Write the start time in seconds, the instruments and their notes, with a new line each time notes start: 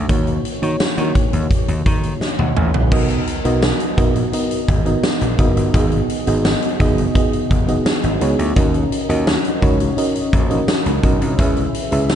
Already playing: fm electric piano A#3 D#4 F#4 C#5
0.09 slap bass D#2, fm electric piano A#3 D#4 F#4 C#5, kick, closed hi-hat
0.27 closed hi-hat
0.45 closed hi-hat
0.62 slap bass D#3, fm electric piano A#3 D#4 F#4 C#5, closed hi-hat
0.80 muted slap bass stroke, snare, tambourine
0.97 slap bass D#3, fm electric piano A#3 D#4 F#4 C#5, closed hi-hat
1.15 kick, closed hi-hat
1.33 slap bass D#2, closed hi-hat
1.51 kick, closed hi-hat
1.68 slap bass D#2, closed hi-hat
1.86 slap bass D#3, kick, closed hi-hat
2.03 closed hi-hat
2.21 fm electric piano D#5, snare
2.39 slap bass D#2, fm electric piano D#5 F#5, high tom
2.56 slap bass A1, fm electric piano G#5, mid tom
2.74 slap bass A#1, fm electric piano D#5 F#5, floor tom
2.91 slap bass B1, fm electric piano B3 D#4 F#4 A#4 D#5, kick, crash
3.09 closed hi-hat
3.27 closed hi-hat
3.44 slap bass B1, fm electric piano B3 D#4 F#4 A#4 D#5, closed hi-hat
3.62 snare, tambourine
3.80 closed hi-hat
3.97 slap bass A#1, fm electric piano B3 D#4 F#4 A#4 D#5, kick, closed hi-hat
4.16 closed hi-hat
4.33 fm electric piano B3 D#4 F#4 A#4 D#5, closed hi-hat
4.51 closed hi-hat
4.68 slap bass G#1, kick, closed hi-hat
4.85 fm electric piano B3 D#4 F#4 A#4 D#5, closed hi-hat
5.04 snare, tambourine
5.21 slap bass A#1, closed hi-hat
5.38 slap bass F#1, fm electric piano B3 D#4 F#4 A#4 D#5, kick, closed hi-hat
5.56 slap bass G1, closed hi-hat
5.74 slap bass G#1, fm electric piano B3 D#4 F#4 G#4 D#5, kick, closed hi-hat
5.92 closed hi-hat
6.09 closed hi-hat
6.27 slap bass G#1, fm electric piano B3 D#4 F#4 G#4 D#5, closed hi-hat
6.45 snare, tambourine
6.62 closed hi-hat
6.79 slap bass F#1, fm electric piano B3 D#4 F#4 G#4 D#5, kick, closed hi-hat
6.98 closed hi-hat
7.15 fm electric piano B3 D#4 F#4 G#4 D#5, kick, closed hi-hat
7.33 closed hi-hat
7.51 slap bass F#1, kick, closed hi-hat
7.68 fm electric piano B3 D#4 F#4 G#4 D#5, closed hi-hat
7.86 snare, tambourine
8.04 slap bass G#1, closed hi-hat
8.21 slap bass C#2, fm electric piano B3 D#4 F#4 G#4 C#5, closed hi-hat
8.39 slap bass D2, closed hi-hat
8.56 slap bass D#2, fm electric piano C#4 D#4 F#4 A#4 D#5, kick, closed hi-hat
8.74 closed hi-hat
8.92 closed hi-hat
9.09 slap bass D#2, fm electric piano C#4 D#4 F#4 A#4 D#5, closed hi-hat
9.27 snare, tambourine
9.45 closed hi-hat
9.61 slap bass C#2, fm electric piano C#4 D#4 F#4 A#4 C#5, kick, closed hi-hat
9.80 closed hi-hat
9.97 fm electric piano C#4 D#4 F#4 A#4 D#5, closed hi-hat
10.15 closed hi-hat
10.33 slap bass A#1, kick, closed hi-hat
10.50 fm electric piano C#4 D#4 F#4 A#4 D#5, closed hi-hat
10.68 snare, tambourine
10.86 slap bass C#2, closed hi-hat
11.03 slap bass B1, fm electric piano C#4 D#4 F#4 A#4 D#5, kick, closed hi-hat
11.21 slap bass C2, closed hi-hat
11.38 slap bass C#2, fm electric piano C#4 E4 G#4 B4 E5, kick, closed hi-hat
11.56 closed hi-hat
11.74 closed hi-hat
11.91 slap bass C#2, fm electric piano C#4 E4 G#4 B4 E5, closed hi-hat
12.09 snare, tambourine